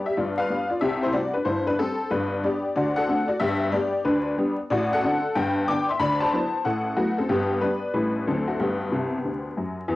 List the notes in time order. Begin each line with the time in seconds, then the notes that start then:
0.06 G4 E5
0.17 G1 G2 F4 D5
0.38 B4 F5
0.49 G3 B3 D4
0.70 F4 D5
0.81 C2 C3 G4 E5
1.03 E4 C5
1.13 G3 C4 F#4 D5
1.34 D4 B4
1.45 G1 G2 E4 C5
1.67 D4 B4
1.79 G3 C4 A4
2.11 G1 G2 D4 B4
2.44 G3 B3 D4 G4 D5
2.76 D2 D3 F#4 D5
2.96 A4 F#5
3.08 A3 C4 D4
3.28 F#4 D5
3.40 G1 G2 G4 E5
3.72 G3 B3 D4 G4 D5
4.05 D2 D3 D4 B4
4.38 G3 B3 D4
4.70 A1 A2 F#4 D5
4.93 A4 F#5
5.04 D3 C4 D4
5.35 G1 G2 B4 G5
5.68 D3 B3 D4 G5 D6
5.89 E5 C6
6.00 D2 D3 D5 B5
6.20 C5 A5
6.33 F#3 B3 E4
6.65 A1 A2 A4 F#5
6.97 F#3 A3 B3 E4 F#4
7.18 C4 A4
7.29 G1 G2 B3 G4
7.61 G3 B3 D4 B4
7.93 A1 A2 G3 A3 C#4 E4 B4
8.27 D2 D3 F#3 A3 C4 A4
8.48 A3 F#4
8.59 G1 G2 B3 G4
8.92 C2 C3
9.25 D2 D3
9.57 F#2 F#3
9.88 E2 E3